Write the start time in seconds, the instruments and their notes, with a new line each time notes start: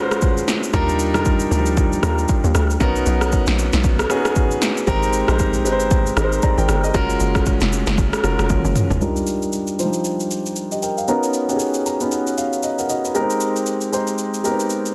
Already playing: grand piano G#3 C#4 F4 F#4 A#4 B4
0.03 grand piano C5
0.11 cross-stick, shaker
0.22 kick, shaker
0.37 shaker
0.48 snare, shaker
0.63 shaker
0.73 log drum bass D#2, grand piano G3 D4 D#4 F4 A#4, kick, shaker
0.89 shaker
0.99 shaker
1.14 log drum bass F2, grand piano G3 D4 D#4 F4 A#4, cross-stick, shaker
1.25 kick, shaker
1.40 shaker
1.51 log drum bass D2, grand piano F3 D4 D#4 F4 A#4, shaker
1.57 grand piano G3
1.66 shaker
1.77 kick, shaker
1.93 shaker
2.03 log drum bass D#2, grand piano G3 D4 D#4 F4 A#4, cross-stick, shaker
2.18 shaker
2.29 kick, shaker
2.44 log drum bass D#2, shaker
2.55 log drum bass D2, cross-stick, shaker
2.70 shaker
2.80 log drum bass B1, grand piano B3 C#4 D#4 F#4 A#4, kick, shaker
2.96 shaker
3.06 log drum bass B1, shaker
3.21 cross-stick, shaker
3.32 kick, shaker
3.47 log drum bass A#1, snare, shaker
3.59 shaker
3.73 log drum bass B1, snare, shaker
3.84 kick, shaker
3.99 cross-stick, shaker
4.10 grand piano B3 C#4 D#4 F#4 G#4, cross-stick, shaker
4.25 cross-stick, shaker
4.35 kick, shaker
4.51 shaker
4.62 snare, shaker
4.77 shaker
4.87 log drum bass G#1, grand piano G#3 C4 D#4 G4 A#4, kick, shaker
5.03 shaker
5.13 shaker
5.28 log drum bass A#1, grand piano G#3 C4 D#4 G4 C5, cross-stick, shaker
5.39 kick, shaker
5.54 shaker
5.65 log drum bass G1, grand piano G#3 C4 D#4 G4 B4, shaker
5.72 grand piano C5
5.80 shaker
5.91 kick, shaker
6.07 shaker
6.17 log drum bass G#1, grand piano G#3 C4 D#4 G4 A#4, cross-stick, shaker
6.24 grand piano C5
6.32 shaker
6.42 grand piano D5 A#5, kick, shaker
6.58 log drum bass G#1, grand piano A#4 G5, shaker
6.69 log drum bass G1, cross-stick, shaker
6.84 grand piano G4 D#5, shaker
6.94 log drum bass F#1, grand piano G#3 C#4 F4 F#4 A#4, kick, shaker
7.10 shaker
7.20 log drum bass F#1, shaker
7.35 kick, cross-stick, shaker
7.46 kick, shaker
7.60 log drum bass F1, snare, shaker
7.73 shaker
7.87 log drum bass F#1, snare, shaker
7.98 log drum bass F#1, kick, shaker
8.13 cross-stick, shaker
8.23 log drum bass F1, grand piano G#3 C#4 F4 F#4 A#4, cross-stick, shaker
8.39 log drum bass F1, cross-stick, shaker
8.49 log drum bass F#1, kick, high tom, shaker
8.65 log drum bass F#1, shaker
8.76 mid tom, shaker
8.90 log drum bass F1, floor tom, shaker
9.01 grand piano G3 D4 D#4 F4 A#4, shaker
9.17 shaker
9.27 shaker
9.42 shaker
9.53 shaker
9.67 shaker
9.79 grand piano F3 D4 D#4 F4 C5, shaker
9.85 grand piano G3
9.93 shaker
10.05 shaker
10.20 shaker
10.31 shaker
10.46 shaker
10.56 shaker
10.72 grand piano G4 D#5, shaker
10.83 grand piano A#4 G5, shaker
10.97 grand piano F5, shaker
11.08 grand piano B3 C#4 D#4 F#4 A#4, shaker
11.23 shaker
11.34 shaker
11.49 grand piano B3 C#4 D#4 F#4 G4, shaker
11.56 grand piano G#4, shaker
11.74 shaker
11.86 grand piano A#5, shaker
12.00 grand piano B3 C#4 D#4 F#4 B4, shaker
12.12 grand piano F#5, shaker
12.27 shaker
12.38 grand piano F5, shaker
12.53 shaker
12.63 grand piano D#5, shaker
12.79 grand piano A#4 F#5, shaker
12.89 grand piano F#4 D#5, shaker
13.04 grand piano D#4 B4, shaker
13.15 grand piano G#3 B3 D#4 G4 A#4, shaker
13.21 grand piano C4
13.30 shaker
13.41 shaker
13.56 shaker
13.67 shaker
13.81 shaker
13.92 grand piano G#3 C4 D#4 G4 C5, shaker
14.07 shaker
14.18 shaker
14.34 shaker
14.44 grand piano G#3 B3 D#4 G4 A#4, shaker
14.50 grand piano C4
14.60 shaker
14.70 shaker
14.86 shaker